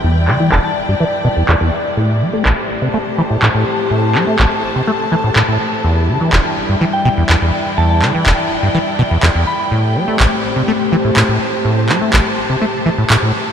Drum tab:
CP |-xx---x-|--x---x-|-xx---x-|--x---x-|

CP |-xx---x-|--x---x-|-xx---x-|